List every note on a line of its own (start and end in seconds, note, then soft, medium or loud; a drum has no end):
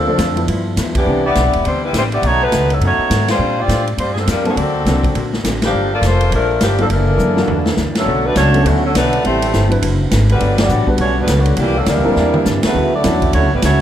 0.00 0.17 D2 medium
0.00 0.46 F3 medium
0.00 0.46 C4 medium
0.00 0.45 D4 medium
0.00 0.45 A4 medium
0.07 0.17 F3 medium
0.07 0.17 A3 medium
0.07 0.17 C4 medium
0.07 0.18 D4 medium
0.07 0.18 A4 medium
0.17 0.47 F2 medium
0.17 0.37 D3 medium
0.17 0.37 A3 medium
0.17 0.38 C4 medium
0.17 0.38 F4 medium
0.17 snare medium
0.17 hi-hat pedal medium
0.17 ride medium
0.36 0.75 F3 medium
0.36 0.75 A3 medium
0.36 0.75 B3 medium
0.36 0.75 E4 medium
0.36 0.75 A4 medium
0.36 ride soft
0.47 0.76 G2 medium
0.47 0.67 G2 soft
0.47 0.67 F3 medium
0.47 0.68 B3 soft
0.47 0.69 E4 soft
0.47 ride medium
0.76 1.05 E2 medium
0.76 0.97 G2 medium
0.76 0.97 F3 medium
0.76 0.97 B3 medium
0.76 0.98 E4 medium
0.76 snare medium
0.76 hi-hat pedal medium
0.76 ride medium
0.95 1.23 E3 medium
0.95 1.23 B3 medium
0.95 1.23 D4 medium
0.95 1.23 G4 medium
0.95 kick medium
0.95 ride medium
1.06 1.34 C2 medium
1.06 1.25 C3 soft
1.06 1.23 E3 medium
1.06 1.26 E3 soft
1.06 1.23 B3 medium
1.06 1.27 B3 medium
1.06 1.23 C4 soft
1.06 1.23 D4 soft
1.06 1.27 D4 medium
1.06 1.23 G4 medium
1.25 1.62 B3 loud
1.25 1.62 E4 medium
1.25 1.63 G4 medium
1.25 1.62 D5 loud
1.35 1.47 B1 medium
1.35 1.55 C3 medium
1.35 1.55 E3 medium
1.35 1.56 B3 medium
1.35 1.56 D4 medium
1.35 snare medium
1.35 hi-hat pedal medium
1.35 ride medium
1.45 1.55 G1 medium
1.53 1.64 E1 medium
1.53 ride soft
1.65 1.93 D2 medium
1.65 1.84 C3 soft
1.65 1.85 E3 soft
1.65 1.83 G3 medium
1.65 1.85 B3 soft
1.65 1.83 D4 medium
1.65 1.86 D4 soft
1.65 1.83 E4 medium
1.65 1.83 C5 medium
1.65 ride medium
1.84 1.94 G3 medium
1.84 1.94 D4 medium
1.84 1.94 E4 medium
1.84 1.94 B4 medium
1.93 2.22 A1 medium
1.93 2.14 C3 medium
1.93 2.14 E3 medium
1.93 2.04 G3 medium
1.93 2.04 D4 medium
1.93 2.04 E4 medium
1.93 2.04 C5 medium
1.93 snare medium
1.93 hi-hat pedal medium
1.93 ride medium
1.98 2.15 B3 medium
1.98 2.15 D4 medium
2.12 2.24 B3 medium
2.12 2.24 E4 medium
2.12 2.23 G4 medium
2.12 2.23 D5 loud
2.12 ride soft
2.22 2.51 B1 medium
2.22 2.43 B2 medium
2.22 2.43 D#3 soft
2.22 2.42 A3 medium
2.22 2.41 D#4 loud
2.22 2.42 F#4 loud
2.22 2.42 C#5 loud
2.22 ride medium
2.26 2.44 A3 soft
2.26 2.44 C#4 medium
2.43 2.71 A3 medium
2.43 2.71 D#4 medium
2.43 2.71 F#4 medium
2.43 2.71 B4 loud
2.52 2.80 C#2 medium
2.52 2.72 B2 medium
2.52 2.72 D#3 medium
2.52 2.72 A3 medium
2.52 snare medium
2.52 hi-hat pedal medium
2.52 ride medium
2.56 2.73 C#4 medium
2.70 2.83 F#3 medium
2.70 2.83 C#4 medium
2.70 2.83 D#4 medium
2.70 2.83 A4 medium
2.70 ride soft
2.80 2.98 F#2 medium
2.80 3.01 B2 soft
2.80 3.01 D#3 soft
2.80 3.02 A3 soft
2.80 ride medium
2.85 3.27 A3 medium
2.85 3.02 C#4 soft
2.85 3.27 D#4 medium
2.85 3.27 F#4 medium
2.85 3.28 C#5 loud
2.98 muted upright bass stroke soft
3.10 3.38 G#2 medium
3.10 3.29 B2 medium
3.10 3.30 D#3 medium
3.10 3.30 A3 medium
3.10 3.30 C#4 medium
3.10 snare medium
3.10 hi-hat pedal medium
3.10 ride medium
3.28 3.57 G3 medium
3.28 3.57 D4 medium
3.28 3.57 F4 medium
3.28 3.57 C5 medium
3.28 snare medium
3.28 ride medium
3.39 3.67 A#2 medium
3.39 3.59 A#2 soft
3.39 3.60 G3 soft
3.39 3.60 C4 soft
3.39 3.60 D4 soft
3.59 3.88 C4 medium
3.59 3.88 F4 medium
3.59 3.88 G4 medium
3.59 3.88 D5 medium
3.68 3.97 A2 loud
3.68 3.88 A#2 medium
3.68 3.88 G3 medium
3.68 3.89 C4 medium
3.68 3.89 D4 medium
3.68 snare medium
3.68 hi-hat pedal medium
3.68 ride medium
3.87 ride soft
3.97 4.26 G2 medium
3.97 4.17 A#2 soft
3.97 4.11 G3 medium
3.97 4.18 G3 soft
3.97 4.18 C4 soft
3.97 4.11 D4 medium
3.97 4.19 D4 soft
3.97 4.11 F4 medium
3.97 4.11 C5 medium
3.97 ride medium
4.14 4.17 G#4 medium
4.14 snare soft
4.19 4.29 F3 medium
4.19 4.29 A#3 medium
4.19 4.29 D4 medium
4.19 4.29 A4 medium
4.26 4.56 F2 medium
4.26 4.46 A#2 medium
4.26 4.47 G3 medium
4.26 4.46 C4 medium
4.26 4.47 D4 medium
4.26 snare medium
4.26 hi-hat pedal medium
4.26 ride medium
4.31 4.46 G3 medium
4.31 4.46 D4 medium
4.31 4.46 F4 medium
4.31 4.46 A#4 medium
4.44 4.55 F#3 medium
4.44 4.55 A#3 medium
4.44 4.56 C4 medium
4.44 4.56 D4 medium
4.44 4.56 A4 medium
4.44 ride soft
4.48 5.32 C4 medium
4.48 5.32 F#4 medium
4.48 5.32 A4 medium
4.48 5.33 D5 medium
4.56 4.84 D2 medium
4.56 4.76 D3 soft
4.56 4.77 A#3 medium
4.56 4.77 C4 medium
4.56 4.77 F#4 medium
4.56 ride medium
4.85 5.14 C2 medium
4.85 5.05 D3 medium
4.85 5.02 F#3 medium
4.85 5.02 A#3 soft
4.85 5.06 A#3 medium
4.85 5.02 C4 medium
4.85 5.06 C4 medium
4.85 5.03 D4 soft
4.85 5.06 F#4 medium
4.85 5.03 A4 medium
4.85 snare medium
4.85 hi-hat pedal soft
4.85 ride medium
5.03 kick medium
5.03 ride soft
5.14 5.43 A#1 medium
5.14 5.34 D3 medium
5.14 5.35 A#3 medium
5.14 5.35 C4 soft
5.14 ride medium
5.19 5.36 F#4 medium
5.33 snare medium
5.44 5.72 A1 medium
5.44 5.64 D3 medium
5.44 5.64 A#3 medium
5.44 5.65 C4 medium
5.44 5.65 F#4 medium
5.44 snare medium
5.44 hi-hat pedal medium
5.44 ride medium
5.62 5.91 F3 medium
5.62 5.91 D4 medium
5.62 5.91 G4 medium
5.62 snare medium
5.62 ride medium
5.66 5.91 A#3 medium
5.73 6.01 G1 medium
5.73 5.93 G3 soft
5.73 5.93 A#3 soft
5.73 5.94 F4 medium
5.73 5.94 A4 medium
5.93 6.03 A#3 medium
5.93 6.03 F4 medium
5.93 6.03 A4 medium
5.93 6.03 D5 loud
6.02 6.31 F1 medium
6.02 6.22 G3 medium
6.02 6.22 A#3 medium
6.02 6.33 A#3 medium
6.02 6.23 F4 medium
6.02 6.23 A4 medium
6.02 6.33 A4 medium
6.02 snare medium
6.02 hi-hat pedal soft
6.02 ride medium
6.06 6.33 F4 medium
6.06 6.34 C5 loud
6.21 ride soft
6.32 6.60 A#1 medium
6.32 6.60 F3 medium
6.32 6.51 G3 soft
6.32 6.61 A3 medium
6.32 6.52 A#3 soft
6.32 6.60 D4 medium
6.32 6.52 F4 soft
6.32 6.53 A4 soft
6.32 6.61 A#4 loud
6.32 ride medium
6.60 6.89 G1 medium
6.60 6.79 F3 medium
6.60 6.80 G3 medium
6.60 6.81 A#3 medium
6.60 6.79 A#3 medium
6.60 6.79 D4 medium
6.60 6.81 F4 medium
6.60 6.79 G4 medium
6.60 6.81 A4 medium
6.60 snare medium
6.60 hi-hat pedal medium
6.60 ride medium
6.78 6.86 F3 medium
6.78 6.89 F#3 medium
6.78 6.90 A#3 soft
6.78 6.86 A#3 medium
6.78 6.90 D4 medium
6.78 6.86 D4 medium
6.78 6.90 E4 medium
6.78 6.90 A4 medium
6.78 6.86 A4 medium
6.78 ride soft
6.90 7.17 F#1 medium
6.90 7.10 F#2 soft
6.90 7.74 D3 medium
6.90 7.74 E3 medium
6.90 7.75 E3 medium
6.90 7.11 E3 medium
6.90 7.74 A#3 medium
6.90 7.75 D4 medium
6.90 7.75 A4 medium
6.90 7.75 A#4 medium
6.90 ride medium
6.94 7.11 A#3 medium
6.94 7.12 D4 medium
7.18 7.47 F#2 medium
7.18 7.39 F#2 medium
7.18 7.39 E3 medium
7.18 7.40 A#3 medium
7.18 hi-hat pedal medium
7.18 high tom soft
7.23 7.40 D4 medium
7.36 7.75 F#3 medium
7.36 7.75 A#3 medium
7.36 7.75 D4 medium
7.36 7.76 E4 medium
7.36 7.76 F#4 medium
7.36 snare medium
7.48 7.76 E2 medium
7.48 7.67 F#2 soft
7.48 7.67 E3 soft
7.48 7.68 A#3 medium
7.48 7.69 D4 medium
7.48 floor tom medium
7.66 snare medium
7.76 8.06 D2 medium
7.76 7.96 F#2 medium
7.76 7.97 E3 medium
7.76 7.97 A#3 medium
7.76 7.98 D4 medium
7.76 snare medium
7.76 hi-hat pedal medium
7.95 8.23 D3 medium
7.95 8.23 F#3 medium
7.95 8.24 F#3 medium
7.95 8.24 A3 medium
7.95 8.24 C#4 medium
7.95 8.24 D4 medium
7.95 8.24 A4 medium
7.95 snare medium
7.95 ride medium
8.06 8.35 B1 medium
8.06 8.26 B3 soft
8.06 8.26 D4 medium
8.06 8.27 A4 medium
8.06 8.27 C#5 soft
8.25 8.36 D3 medium
8.25 8.35 F#3 medium
8.25 8.36 A3 medium
8.25 8.37 B3 medium
8.25 8.37 D4 medium
8.25 8.37 F#4 medium
8.25 8.37 B4 loud
8.35 8.64 C#2 medium
8.35 8.63 F#3 medium
8.35 8.63 A3 loud
8.35 8.64 A3 loud
8.35 8.55 B3 medium
8.35 8.63 C#4 medium
8.35 8.56 D4 medium
8.35 8.64 D4 medium
8.35 8.64 F#4 medium
8.35 8.56 A4 medium
8.35 8.64 C#5 loud
8.35 8.57 C#5 medium
8.35 snare medium
8.35 hi-hat pedal medium
8.35 ride medium
8.53 8.92 F#3 medium
8.53 8.92 B3 medium
8.53 8.92 C#4 medium
8.53 8.93 D4 medium
8.53 8.93 A4 medium
8.53 ride soft
8.64 8.94 D2 medium
8.64 8.83 A2 medium
8.64 8.83 D3 medium
8.64 8.84 D3 medium
8.64 8.83 F#3 medium
8.64 8.84 A3 medium
8.64 8.85 B3 soft
8.64 8.83 C#4 medium
8.64 8.85 D4 soft
8.64 8.84 F#4 medium
8.64 8.86 A4 soft
8.64 8.86 C#5 soft
8.64 ride medium
8.84 8.94 D3 medium
8.84 8.94 F#3 medium
8.84 8.95 F#3 medium
8.84 8.95 A3 medium
8.84 8.95 C#4 medium
8.84 8.95 D4 medium
8.84 8.95 A4 medium
8.94 9.23 B1 medium
8.94 9.22 D3 medium
8.94 9.22 F#3 medium
8.94 9.23 A3 medium
8.94 9.22 B3 medium
8.94 9.14 B3 medium
8.94 9.23 D4 medium
8.94 9.15 D4 medium
8.94 9.23 F#4 medium
8.94 9.15 A4 medium
8.94 9.23 B4 loud
8.94 9.15 C#5 medium
8.94 snare medium
8.94 hi-hat pedal medium
8.94 ride medium
9.13 ride soft
9.24 9.53 A1 medium
9.24 9.43 A2 soft
9.24 9.68 E3 medium
9.24 9.68 G3 medium
9.24 9.44 G3 medium
9.24 9.69 A3 medium
9.24 9.68 C4 medium
9.24 9.44 C4 medium
9.24 9.69 E4 medium
9.24 9.45 E4 medium
9.24 9.69 G4 medium
9.24 9.69 C5 loud
9.24 ride medium
9.42 ride medium
9.53 9.82 G1 medium
9.53 9.72 A2 medium
9.53 9.72 G3 medium
9.53 9.73 C4 medium
9.53 9.73 E4 medium
9.53 snare medium
9.53 hi-hat pedal medium
9.69 10.08 F#3 medium
9.69 10.09 C4 medium
9.69 10.09 D4 medium
9.69 10.09 E4 medium
9.69 10.09 B4 medium
9.69 ride medium
9.82 10.11 F#1 medium
9.82 10.01 D3 medium
9.82 10.02 C4 soft
9.82 10.02 F#4 medium
9.82 10.03 B4 medium
9.82 ride medium
10.11 10.40 G#1 medium
10.11 10.30 D3 medium
10.11 10.31 C4 medium
10.11 10.31 F#4 medium
10.11 10.31 B4 medium
10.11 snare medium
10.11 hi-hat pedal medium
10.11 ride medium
10.29 10.57 D3 medium
10.29 10.57 F#3 medium
10.29 10.57 G3 medium
10.29 10.57 B3 medium
10.29 10.57 D4 medium
10.29 10.58 F#4 medium
10.29 10.57 B4 loud
10.29 ride soft
10.38 10.68 G1 medium
10.38 10.58 G2 soft
10.38 10.59 F#3 medium
10.38 10.60 B3 medium
10.38 10.60 D4 medium
10.38 ride medium
10.58 10.88 F#3 medium
10.58 10.88 B3 medium
10.58 10.89 B3 medium
10.58 10.88 D4 medium
10.58 10.89 F#4 medium
10.58 10.89 G4 medium
10.58 10.89 D5 medium
10.58 snare medium
10.58 ride medium
10.68 10.86 A1 medium
10.68 10.88 G2 medium
10.68 10.89 F#3 medium
10.68 10.89 B3 medium
10.68 10.89 D4 medium
10.68 hi-hat pedal medium
10.87 11.26 G3 medium
10.87 11.26 B3 medium
10.87 11.26 D4 medium
10.87 11.26 F#4 medium
10.87 11.26 B4 medium
10.87 muted upright bass stroke soft
10.87 kick medium
10.98 11.26 B1 medium
10.98 11.18 G2 soft
10.98 11.19 F#3 soft
10.98 11.18 A3 medium
10.98 11.19 B3 soft
10.98 11.17 C#4 medium
10.98 11.18 D4 medium
10.98 11.18 F#4 medium
10.98 11.18 C#5 medium
10.98 ride medium
11.02 11.20 D4 medium
11.19 11.37 D3 medium
11.19 11.37 F#3 medium
11.19 11.37 G3 medium
11.19 11.37 B3 medium
11.19 11.38 D4 medium
11.19 11.38 F#4 medium
11.19 11.38 B4 medium
11.27 11.56 C#2 medium
11.27 11.47 G2 medium
11.27 11.47 F#3 medium
11.27 11.48 B3 medium
11.27 11.48 D4 medium
11.27 snare medium
11.27 hi-hat pedal medium
11.27 ride medium
11.38 11.55 B2 medium
11.38 11.55 D3 medium
11.38 11.55 F#3 medium
11.38 11.55 G3 medium
11.38 11.56 B3 medium
11.38 11.55 F#4 medium
11.45 ride soft
11.56 11.85 C2 medium
11.56 11.76 A#2 medium
11.56 11.76 C3 soft
11.56 11.77 E3 medium
11.56 11.76 E3 medium
11.56 11.76 G3 medium
11.56 11.77 A#3 soft
11.56 11.76 A#3 medium
11.56 11.76 D4 medium
11.56 11.78 D4 medium
11.56 11.58 F#4 medium
11.56 11.76 G4 loud
11.56 ride medium
11.76 11.88 F#3 medium
11.76 11.87 A3 medium
11.76 11.88 A#3 medium
11.76 11.88 D4 medium
11.76 11.88 A4 medium
11.86 11.97 D2 loud
11.86 12.06 C3 medium
11.86 12.59 E3 medium
11.86 12.06 E3 medium
11.86 12.59 G3 medium
11.86 12.60 G3 medium
11.86 12.59 A#3 medium
11.86 12.07 A#3 medium
11.86 12.07 D4 medium
11.86 12.60 D4 medium
11.86 12.60 E4 medium
11.86 12.60 A#4 medium
11.86 snare medium
11.86 hi-hat pedal medium
11.86 ride medium
11.97 12.06 C2 medium
12.04 12.16 A#1 medium
12.04 12.42 G3 medium
12.04 12.43 C4 medium
12.04 12.43 D4 medium
12.04 12.43 E4 medium
12.04 12.43 A#4 medium
12.16 12.44 E2 medium
12.16 12.35 C3 soft
12.16 12.36 E3 soft
12.16 12.36 A#3 soft
12.16 12.36 D4 medium
12.16 snare soft
12.34 mid tom medium
12.45 12.62 G2 medium
12.45 12.64 C3 medium
12.45 12.64 E3 medium
12.45 12.64 A#3 medium
12.45 12.65 D4 medium
12.45 snare medium
12.45 hi-hat pedal medium
12.63 12.91 C#3 medium
12.63 12.91 F#3 medium
12.63 12.92 A3 medium
12.63 12.91 B3 medium
12.63 12.92 E4 medium
12.63 12.92 F#4 medium
12.63 12.92 B4 loud
12.63 muted upright bass stroke soft
12.63 snare medium
12.63 ride medium
12.74 13.03 D2 medium
12.74 12.93 D3 soft
12.74 12.94 F#3 medium
12.74 12.94 C#4 soft
12.74 12.95 E4 medium
12.94 13.34 F#3 medium
12.94 13.34 A3 medium
12.94 13.33 A3 medium
12.94 13.34 D4 medium
12.94 13.33 E4 medium
12.94 13.33 F#4 medium
12.94 13.34 D5 loud
13.03 13.32 E2 loud
13.03 13.22 D3 medium
13.03 13.20 F#3 medium
13.03 13.23 F#3 medium
13.03 13.20 C#4 soft
13.03 13.23 C#4 medium
13.03 13.20 D4 soft
13.03 13.20 E4 medium
13.03 13.23 E4 medium
13.03 13.20 A4 medium
13.03 snare medium
13.03 hi-hat pedal medium
13.03 ride medium
13.22 kick medium
13.22 ride soft
13.33 13.43 D2 medium
13.33 13.52 D3 soft
13.33 13.52 F#3 soft
13.33 13.52 F#3 medium
13.33 13.51 A3 medium
13.33 13.52 A3 medium
13.33 13.53 C#4 soft
13.33 13.52 C#4 medium
13.33 13.52 E4 medium
13.33 13.53 E4 soft
13.33 13.51 F#4 medium
13.33 13.52 C#5 loud
13.33 ride medium
13.43 13.52 C#2 medium
13.53 13.62 A1 medium
13.53 13.63 G3 medium
13.53 13.62 B3 medium
13.53 13.62 C#4 medium
13.53 13.63 E4 medium
13.53 13.62 B4 medium
13.62 13.81 C#2 medium
13.62 13.81 D3 medium
13.62 13.81 F#3 medium
13.62 13.81 A3 medium
13.62 13.81 C#4 medium
13.62 13.81 E4 medium
13.62 13.81 F#4 medium
13.62 13.81 C#5 medium
13.62 snare medium
13.62 hi-hat pedal medium
13.62 ride medium